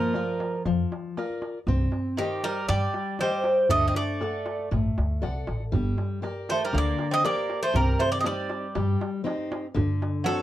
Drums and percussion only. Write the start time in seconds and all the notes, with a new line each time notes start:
0.14 darbuka tek
0.40 darbuka tek
0.65 darbuka tek
0.92 darbuka tek
1.17 darbuka tek
1.30 darbuka tek
1.42 darbuka tek
1.68 darbuka dum
1.92 darbuka tek
2.18 darbuka tek
2.44 darbuka tek
2.69 darbuka tek
2.94 darbuka tek
3.19 darbuka tek
3.31 darbuka tek
3.44 darbuka tek
3.69 darbuka dum
3.83 darbuka tek
3.95 darbuka tek
4.21 darbuka tek
4.46 darbuka tek
4.59 darbuka tek
4.72 darbuka tek, darbuka dum
4.98 darbuka tek
5.11 darbuka tek
5.23 darbuka tek
5.35 darbuka tek
5.47 darbuka tek
5.60 darbuka tek
5.73 darbuka dum
5.98 darbuka tek
6.23 darbuka tek
6.49 darbuka tek
6.74 darbuka tek
6.99 darbuka tek
7.25 darbuka tek
7.38 darbuka tek
7.49 darbuka tek
7.75 darbuka dum
8.00 darbuka tek
8.24 darbuka tek
8.50 darbuka tek
8.75 darbuka tek
9.01 darbuka tek
9.27 darbuka tek
9.38 darbuka tek
9.52 darbuka tek
9.77 darbuka dum
10.02 darbuka tek
10.28 darbuka tek